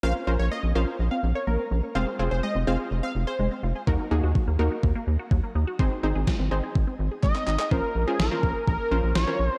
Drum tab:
CP |----------------|----------------|----------------|------------xxxx|
SD |----------------|----------------|----------------|----o-----------|
BD |----------------|----------------|o---o---o---o---|o---o---o---o---|

CP |----------------|
SD |----o-------o---|
BD |o-----o-o-------|